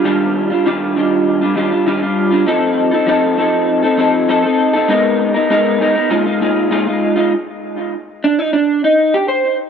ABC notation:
X:1
M:4/4
L:1/16
Q:1/4=99
K:Eb
V:1 name="Clean electric guitar"
[E,G,DF]3 [G,DF] [E,G,DF]2 [E,G,DF]3 [G,DF] [E,G,DF] [G,DF] [E,G,DF] [G,DF]2 [G,DF] | [F,CE=A]3 [CEA] [F,CEA]2 [F,CEA]3 [CEA] [F,CEA]2 [F,CEA] [CEA]2 [CEA] | [A,_CEB]3 [CEB] [A,CEB]2 [A,CEB] [CEB] [B,,A,EF] [A,EF] [B,,A,EF]2 [B,,A,EF] [A,EF]2 [A,EF] | z6 D E D2 E2 G c2 z |]